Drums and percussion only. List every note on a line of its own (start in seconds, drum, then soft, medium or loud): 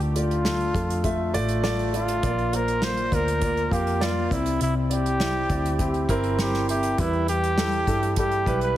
0.00 closed hi-hat soft
0.16 closed hi-hat medium
0.31 closed hi-hat soft
0.45 snare medium
0.60 closed hi-hat soft
0.74 kick medium
0.74 closed hi-hat medium
0.90 closed hi-hat soft
1.04 kick medium
1.04 closed hi-hat medium
1.34 closed hi-hat medium
1.49 closed hi-hat soft
1.64 snare loud
1.79 closed hi-hat soft
1.94 closed hi-hat medium
2.08 closed hi-hat soft
2.23 kick medium
2.23 closed hi-hat medium
2.39 closed hi-hat soft
2.53 closed hi-hat medium
2.68 closed hi-hat soft
2.82 snare loud
2.97 closed hi-hat soft
3.12 kick medium
3.12 closed hi-hat medium
3.28 closed hi-hat soft
3.42 kick medium
3.42 closed hi-hat medium
3.57 closed hi-hat soft
3.71 kick medium
3.71 closed hi-hat medium
3.87 closed hi-hat soft
4.02 snare loud
4.31 kick medium
4.31 closed hi-hat medium
4.46 closed hi-hat soft
4.61 closed hi-hat medium
4.91 closed hi-hat medium
5.06 closed hi-hat soft
5.20 snare medium
5.50 kick medium
5.50 closed hi-hat medium
5.66 closed hi-hat soft
5.79 kick medium
5.79 closed hi-hat medium
5.94 closed hi-hat soft
6.09 kick medium
6.09 closed hi-hat medium
6.24 closed hi-hat soft
6.39 snare loud
6.54 snare soft
6.69 closed hi-hat medium
6.83 closed hi-hat soft
6.98 kick loud
6.98 closed hi-hat medium
7.13 closed hi-hat soft
7.28 closed hi-hat medium
7.44 closed hi-hat soft
7.58 snare loud
7.72 closed hi-hat soft
7.87 kick medium
7.87 closed hi-hat medium
8.03 closed hi-hat soft
8.16 kick medium
8.16 closed hi-hat medium
8.31 closed hi-hat soft
8.46 kick medium
8.46 closed hi-hat medium
8.61 closed hi-hat soft